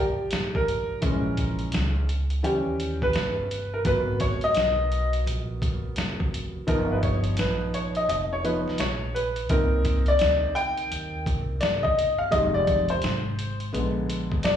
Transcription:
Already playing: A#1 F3 G3 D4 G4
0.31 G#1, snare, closed hi-hat
0.55 A#4, kick
0.68 closed hi-hat
1.01 A#1 E3 G#3 C#4, kick, closed hi-hat
1.37 kick, closed hi-hat
1.59 closed hi-hat
1.72 C#2, snare, closed hi-hat
2.09 closed hi-hat
2.30 closed hi-hat
2.43 D#2 E3 G3 C#4 G4, closed hi-hat
2.80 closed hi-hat
3.02 B4, kick
3.13 G1, snare, closed hi-hat
3.51 closed hi-hat
3.74 A#4
3.85 G#1 F#3 B3 A#4 B4, kick, closed hi-hat
4.20 C#5, kick, closed hi-hat
4.41 D#5, closed hi-hat
4.55 B1, snare, closed hi-hat
4.92 closed hi-hat
5.13 closed hi-hat
5.26 A#1, closed hi-hat
5.62 kick, closed hi-hat
5.85 muted upright bass stroke
5.96 F1, snare, closed hi-hat
6.20 kick
6.34 closed hi-hat
6.67 G1 F3 B3 D#4 A#4, kick, closed hi-hat
6.92 B4
7.03 C#5, kick, closed hi-hat
7.24 closed hi-hat
7.37 A#1 B4, snare, closed hi-hat
7.74 C#5, closed hi-hat
7.95 D#5, closed hi-hat
8.09 F1 D#5, closed hi-hat
8.33 C#5
8.44 F3 B3 D#4 B4, closed hi-hat
8.67 muted upright bass stroke, snare
8.78 A#1 C#5, snare, closed hi-hat
9.14 B4, closed hi-hat
9.36 closed hi-hat
9.49 C2 A#3 C4 D#4 A#4, kick, closed hi-hat
9.85 kick, closed hi-hat
10.06 D5, closed hi-hat
10.19 D2, snare, closed hi-hat
10.55 G5, closed hi-hat
10.77 closed hi-hat
10.91 D#2, closed hi-hat
11.26 C2, kick, closed hi-hat
11.61 G1 D5, snare, closed hi-hat
11.83 D#5, kick
11.99 closed hi-hat
12.18 F5
12.31 F1 G3 G#3 D#4 D#5, kick, closed hi-hat
12.54 D5
12.67 kick, closed hi-hat
12.89 C5, closed hi-hat
13.02 G#1, snare, closed hi-hat
13.39 closed hi-hat
13.60 closed hi-hat
13.73 A#1 D3 G#3 B3, closed hi-hat
14.10 closed hi-hat
14.32 muted upright bass stroke, kick
14.43 D2 D5, snare, closed hi-hat

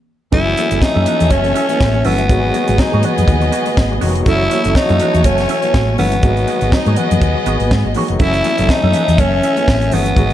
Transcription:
0.32 F#1 E3 F#3 A3 C#4 E4 F#4 A4 E5, kick, closed hi-hat
0.46 muted clean electric guitar stroke, muted conga
0.56 C#4 E4 A4, closed hi-hat, high conga
0.71 F#1 C#4 E4 A4, closed hi-hat
0.81 D#4, muted clean electric guitar stroke, kick, snare
0.95 F#2 C#4 E4 A4, muted conga, high conga
1.06 C#4 E4 B4, closed hi-hat, low conga
1.20 E2, muted clean electric guitar stroke, closed hi-hat, high conga, low conga
1.30 F#1 C#4, muted clean electric guitar stroke, kick, closed hi-hat, muted conga
1.44 muted clean electric guitar stroke, closed hi-hat, muted conga
1.55 C#4 E4 A4, closed hi-hat
1.69 C#4 E4 B4, closed hi-hat, high conga
1.81 A1, kick, snare
1.94 muted clean electric guitar stroke, muted conga, high conga
2.04 G1 E3 F#3 A3 B3 C#4 E4 F#4 A4, open hi-hat, low conga
2.18 muted clean electric guitar stroke, closed hi-hat
2.29 G#1 D#3 F#3 G#3 B3 F#4 G#4 D#5, kick, closed hi-hat
2.43 muted clean electric guitar stroke, muted conga
2.54 B3 F#4 G#4, closed hi-hat, high conga
2.68 G#1 B3 F#4 G#4, closed hi-hat
2.78 D#4, muted fingered electric bass stroke, kick, snare, muted conga
2.92 G#2 B3 F#4 G#4, muted conga, high conga
3.03 B3 F#4 B4, closed hi-hat, low conga
3.17 F#2, muted clean electric guitar stroke, closed hi-hat, high conga, low conga
3.28 D#2, muted clean electric guitar stroke, kick, closed hi-hat
3.41 muted clean electric guitar stroke, closed hi-hat, muted conga
3.52 B3 F#4 G#4, closed hi-hat
3.66 B3 F#4 B4, closed hi-hat, high conga
3.77 G#1, kick, snare, muted conga
3.91 muted clean electric guitar stroke, muted conga, high conga
4.01 F1 D#3 F#3 G#3 B3 F#4 G#4, open hi-hat, low conga
4.15 muted clean electric guitar stroke, closed hi-hat
4.26 F#1 E3 F#3 A3 C#4 E4 F#4 A4 C#5, kick, closed hi-hat
4.40 muted clean electric guitar stroke
4.51 C#4 E4 A4, closed hi-hat, high conga
4.64 F#1 C#4 E4 A4, closed hi-hat
4.75 D#4, muted fingered electric bass stroke, muted clean electric guitar stroke, kick, snare, muted conga
4.89 F#2 C#4 E4 A4, closed hi-hat, high conga
5.00 C#4 E4 B4, closed hi-hat, low conga
5.14 E2, muted clean electric guitar stroke, closed hi-hat, high conga, low conga
5.24 F#1 C#4, muted clean electric guitar stroke, kick, closed hi-hat, muted conga
5.38 muted clean electric guitar stroke, snare, closed hi-hat
5.49 C#4 E4 A4, closed hi-hat
5.62 C#4 E4 B4, closed hi-hat, high conga
5.74 A1, kick, snare
5.88 muted clean electric guitar stroke, muted conga, high conga
5.98 G1 E3 F#3 A3 B3 C#4 E4 F#4 A4, open hi-hat, low conga
6.12 muted clean electric guitar stroke, closed hi-hat
6.23 G#1 D#3 F#3 G#3 B3 F#4 G#4 D#5, kick, closed hi-hat, muted conga
6.37 muted clean electric guitar stroke, closed hi-hat, muted conga
6.47 B3 F#4 G#4, closed hi-hat, high conga
6.61 G#1 B3 F#4 G#4, closed hi-hat
6.72 D#4, muted fingered electric bass stroke, kick, snare, muted conga
6.86 G#2 B3 F#4 G#4, closed hi-hat, muted conga, high conga
6.96 B3 F#4 B4, closed hi-hat, low conga
7.11 F#2, muted clean electric guitar stroke, closed hi-hat, high conga, low conga
7.21 D#2, muted clean electric guitar stroke, kick, closed hi-hat, muted conga
7.36 muted clean electric guitar stroke, muted conga
7.46 G#1 B3 F#4 G#4, closed hi-hat
7.60 G#1 B3 F#4 B4, closed hi-hat, high conga
7.71 G#2, kick, snare, high conga
7.85 G#1, muted clean electric guitar stroke, high conga
7.94 D#3 F#3 G#3 B3 F#4 G#4, open hi-hat, low conga
8.08 F1, muted clean electric guitar stroke, closed hi-hat
8.20 F#1 E3 F#3 A3 C#4 E4 F#4 A4 E5, kick, closed hi-hat
8.33 closed hi-hat, muted conga
8.44 C#4 E4 A4, closed hi-hat, high conga
8.58 F#1 C#4 E4 A4, closed hi-hat
8.69 D#4, muted clean electric guitar stroke, kick, snare, muted conga
8.83 F#2 C#4 E4 A4, high conga
8.93 C#4 E4 B4, closed hi-hat, low conga
9.08 E2, muted clean electric guitar stroke, closed hi-hat, high conga, low conga
9.18 F#1 C#4, muted clean electric guitar stroke, kick, closed hi-hat, muted conga
9.33 muted clean electric guitar stroke
9.43 C#4 E4 A4, closed hi-hat
9.57 C#4 E4 B4, closed hi-hat, high conga
9.68 A1, kick, snare, muted conga
9.82 muted clean electric guitar stroke, closed hi-hat, high conga
9.92 G1 E3 F#3 A3 B3 C#4 E4 F#4 A4, open hi-hat, low conga
10.06 muted clean electric guitar stroke, closed hi-hat
10.16 G#1 D#3 F#3 G#3 B3 F#4 G#4 D#5, kick, closed hi-hat, muted conga
10.30 closed hi-hat

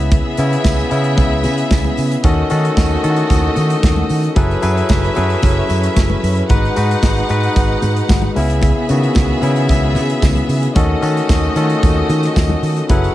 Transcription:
Already playing: C#2 C#3 B3 C#4 E4 G#4 E5
0.11 kick, closed hi-hat, muted conga
0.37 C#3 B3 C#4 E4, closed hi-hat, tambourine
0.53 closed hi-hat
0.64 C#2, kick, snare, tambourine, high conga
0.79 closed hi-hat
0.90 C#3 B3 C#4 E4, closed hi-hat, tambourine
1.04 closed hi-hat
1.17 C#2, kick, closed hi-hat, tambourine, muted conga
1.44 C#3, closed hi-hat, tambourine, muted conga, low conga
1.58 closed hi-hat
1.71 C#2, kick, snare, tambourine, high conga
1.84 high conga
1.97 C#3, open hi-hat, tambourine
2.11 closed hi-hat
2.24 D#2 D#3 A3 C#4 F#4 A4 D#5, kick, closed hi-hat, muted conga
2.50 D#3 C#4 F#4 A4, closed hi-hat, tambourine
2.65 closed hi-hat
2.77 D#2, kick, snare, tambourine, high conga
3.03 D#3 C#4 E4 A4, closed hi-hat, tambourine
3.10 F#4
3.16 closed hi-hat
3.30 D#2, kick, closed hi-hat, tambourine, muted conga
3.56 D#3, closed hi-hat, tambourine, muted conga, low conga
3.70 closed hi-hat
3.83 D#2, kick, snare, tambourine, high conga
3.96 high conga
4.10 D#3, open hi-hat, tambourine
4.24 closed hi-hat
4.36 F#1 F#3 C#4 E4 G#4 A4 B4 E5, kick, closed hi-hat, muted conga
4.51 closed hi-hat
4.62 F#2 F#3 E4 G#4 A4 B4, closed hi-hat, tambourine
4.77 closed hi-hat
4.89 F#1, kick, snare, tambourine, high conga
5.04 closed hi-hat
5.15 F#2 F#3 E4 G#4 A4 B4, closed hi-hat, tambourine, low conga
5.30 closed hi-hat
5.43 F#1, kick, closed hi-hat, tambourine, muted conga, low conga
5.69 F#2, closed hi-hat, tambourine, low conga
5.83 closed hi-hat
5.96 F#1, kick, snare, tambourine, high conga
6.10 high conga
6.23 F#2, open hi-hat, tambourine
6.37 closed hi-hat
6.49 G#1 G#3 D#4 F#4 B4 F#5, kick, closed hi-hat, muted conga
6.65 closed hi-hat
6.76 G#2 G#3 D#4 F#4 B4, closed hi-hat, tambourine
6.91 closed hi-hat
7.03 G#1, kick, snare, tambourine, high conga
7.17 closed hi-hat
7.29 G#2 G#3 D#4 F#4 B4, closed hi-hat, tambourine
7.43 closed hi-hat
7.56 G#1, kick, closed hi-hat, tambourine, muted conga
7.82 G#2, closed hi-hat, tambourine, muted conga, low conga
7.96 closed hi-hat
8.09 G#1, kick, snare, tambourine, high conga
8.22 high conga
8.35 C#2 C#3 B3 C#4 E4 G#4 E5, open hi-hat, tambourine
8.50 closed hi-hat
8.61 kick, closed hi-hat, muted conga
8.89 C#3 D#3 B3 F#4, closed hi-hat, tambourine
9.03 closed hi-hat
9.15 C#2, kick, snare, tambourine, high conga
9.42 C#3 B3 C#4 E4, closed hi-hat, tambourine
9.56 closed hi-hat
9.69 C#2, kick, closed hi-hat, tambourine, muted conga
9.95 C#3, closed hi-hat, tambourine, muted conga, low conga
10.10 closed hi-hat
10.22 C#2, kick, snare, tambourine, high conga
10.35 closed hi-hat, high conga
10.49 C#3, open hi-hat, tambourine
10.63 closed hi-hat
10.75 D#2 D#3 A3 C#4 F#4 A4 D#5, kick, closed hi-hat, tambourine, muted conga
11.01 D#3 C#4 F#4 A4, closed hi-hat, tambourine
11.17 closed hi-hat
11.29 D#2, kick, snare, tambourine, high conga
11.55 D#3 C#4 F4 A4, closed hi-hat, tambourine
11.63 F#4
11.70 closed hi-hat
11.83 D#2, kick, closed hi-hat, tambourine, muted conga
12.09 D#3, closed hi-hat, tambourine, low conga
12.23 snare, closed hi-hat
12.36 D#2, kick, snare, tambourine, high conga
12.49 high conga
12.62 D#3, open hi-hat, tambourine
12.77 closed hi-hat
12.89 F#1 F#3 C#4 E4 G#4 A4 B4 F#5, kick, closed hi-hat, tambourine, muted conga
13.04 closed hi-hat

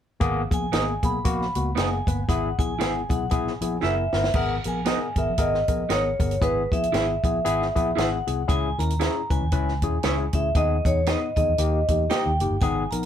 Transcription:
0.20 G#1 A#3 B3 G#4, kick, closed hi-hat
0.51 A#1 A#3 B3 G#4 G#5, kick, closed hi-hat
0.72 G#1 A#3 B3 D#4 G#4 A#4 D#5, snare, closed hi-hat
1.03 B1 A#3 B3 G#4 B5, kick, closed hi-hat
1.24 A#1 A#3 B3 F#4, kick, closed hi-hat
1.42 snare
1.55 C#2 A#3 B3 F#4, closed hi-hat
1.75 F#1 A#3 B3 D#4 G#4 A#4 D#5 G#5, snare, closed hi-hat
2.07 G1 A#3 B3 B4, kick, closed hi-hat
2.29 G#1 B3 E4 G#4 F#5, kick, closed hi-hat
2.59 A#1 B3 E4 G#4 G#5, kick, closed hi-hat
2.79 G#1 B3 E4 G#4 B4 E5, snare, closed hi-hat
3.09 B1 B3 E4 G#4 F#5, kick, closed hi-hat
3.30 B3 E4 G#4 G#5, kick, closed hi-hat
3.47 snare
3.61 A#1 B3 E4 G#4, closed hi-hat
3.81 F#1 B3 E4 G#4 A#4 B4 E5, snare
4.13 G1 B3 E4 A#4, snare
4.24 snare
4.34 G#1 B3 G#4 A#4 F#5, kick, crash
4.64 A#1 B3 G#4 A#4 G#5, closed hi-hat
4.85 B3 D#4 G#4 A#4 D#5, snare, closed hi-hat
5.16 G#1 B3 G#4 A#4 E5, kick, closed hi-hat
5.29 A#1
5.38 G#1 B3 G#4 A#4 D#5, kick, closed hi-hat
5.54 snare
5.68 A#1 B3 G#4 A#4, kick, closed hi-hat
5.89 G#1 B3 D#4 G#4 A#4 C#5 D#5, snare, closed hi-hat
6.19 G1 B3 G#4 A#4, kick, closed hi-hat
6.31 closed hi-hat
6.41 G#1 B3 E4 G#4 B4, kick, closed hi-hat
6.72 A#1 B3 E4 G#4 E5, kick, closed hi-hat
6.83 closed hi-hat
6.92 G#1 B3 E4 G#4 B4 E5, snare, closed hi-hat
7.24 A#1 B3 E4 G#4, kick, closed hi-hat
7.45 G#1 B3 E4 G#4, closed hi-hat
7.62 snare
7.75 A#1 B3 E4 G#4, kick, closed hi-hat
7.96 G#1 B3 E4 G#4 B4 E5 F#5, snare, closed hi-hat
8.27 C2 B3 E4 G#4, closed hi-hat
8.48 C#2 C#4 E4 G#4 G#5, kick, closed hi-hat
8.78 D#2 C#4 E4 A#4 A#5, closed hi-hat
8.90 closed hi-hat
9.00 C#4 E4 G#4 C#5 E5, snare, closed hi-hat
9.30 C#2 C#4 E4 B4 G#5, kick, closed hi-hat
9.41 D#2
9.52 C#2 C#4 E4 B4, kick, closed hi-hat
9.68 snare
9.82 D#2 C#4 E4 G#4, kick, closed hi-hat
10.03 C#2 C#4 E4 G#4 C#5 E5, snare, closed hi-hat
10.33 D2 C#4 E4 G#4 E5, kick, closed hi-hat
10.55 D#2 B3 D#4 G#4 D#5, kick, closed hi-hat
10.85 E2 B3 D#4 G#4 C#5, kick, closed hi-hat
11.06 B3 D#4 G#4 B4 D#5, snare, closed hi-hat
11.36 D#2 B3 D#4 G#4 D#5, kick, closed hi-hat
11.48 E2
11.58 D#2 A#3 D#4 G4, closed hi-hat
11.88 E2 A#3 D#4 G4, kick, closed hi-hat
12.09 A#3 D#4 G4 A#4 D#5 G5, snare, closed hi-hat
12.26 D#2
12.40 F#1 A#3 D#4 G4, closed hi-hat
12.50 G1
12.61 G#1 B3 D#4 G#4 G#5, kick, closed hi-hat
12.91 A#1 B3 D#4 A#4 A#5, closed hi-hat

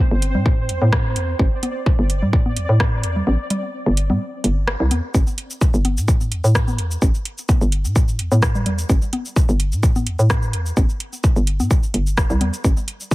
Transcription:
Already playing: C4 C5
0.11 G1
0.22 closed hi-hat
0.35 A2, low conga
0.46 kick
0.69 E2, closed hi-hat
0.82 A2, high conga
0.93 kick, cross-stick
1.16 E2, closed hi-hat
1.39 A1 D5, kick
1.63 closed hi-hat, high conga
1.86 kick
1.99 G1
2.10 closed hi-hat
2.22 A2, low conga
2.33 kick
2.46 high conga
2.57 E2, closed hi-hat
2.69 A2
2.80 kick, cross-stick
3.03 E2, closed hi-hat
3.16 low conga
3.27 A1, high conga
3.50 closed hi-hat, low conga
3.86 G1
3.97 closed hi-hat
4.10 A2, high conga, low conga
4.44 G1, closed hi-hat
4.68 cross-stick
4.80 C2
4.91 E2, closed hi-hat, high conga
5.14 A1, kick, cabasa
5.27 cabasa
5.38 closed hi-hat
5.50 cabasa
5.61 kick, cabasa
5.74 G1, cabasa
5.85 closed hi-hat, high conga
5.97 A2, cabasa
6.08 kick, cabasa
6.21 cabasa
6.32 E2, closed hi-hat
6.44 A2, cabasa
6.55 kick, cross-stick, cabasa
6.68 high conga, cabasa
6.78 E2, closed hi-hat
6.91 cabasa
7.02 A1, kick, cabasa
7.15 cabasa
7.25 closed hi-hat
7.38 cabasa
7.49 kick, high conga, cabasa
7.61 G1, cabasa
7.72 closed hi-hat
7.85 A2, cabasa
7.96 kick, cabasa
8.08 cabasa
8.19 E2, closed hi-hat
8.32 A2, high conga, cabasa
8.42 kick, cross-stick, cabasa
8.55 low conga, cabasa
8.66 E2, closed hi-hat, low conga
8.79 closed hi-hat, cabasa
8.89 A1, kick, cabasa
9.02 cabasa
9.13 closed hi-hat, high conga
9.25 cabasa
9.36 kick, cabasa
9.49 G1, cabasa
9.60 closed hi-hat
9.72 A2, cabasa
9.83 kick, cabasa
9.96 high conga, cabasa
10.07 E2, closed hi-hat
10.19 A2, cabasa
10.30 kick, cross-stick, cabasa
10.43 cabasa
10.53 E2, closed hi-hat
10.66 cabasa
10.77 A1, kick, high conga, cabasa
10.89 cabasa
11.00 closed hi-hat
11.13 cabasa
11.24 kick, cabasa
11.36 G1, cabasa
11.47 closed hi-hat
11.60 A2, high conga, cabasa
11.71 kick, cabasa
11.83 cabasa
11.94 G1, closed hi-hat
12.07 cabasa
12.17 kick, cross-stick, cabasa
12.30 C2, low conga, cabasa
12.41 E2, closed hi-hat, high conga, low conga
12.54 closed hi-hat, cabasa
12.64 A1, kick, cabasa
12.77 cabasa
12.88 closed hi-hat
13.00 cabasa
13.11 kick, cabasa

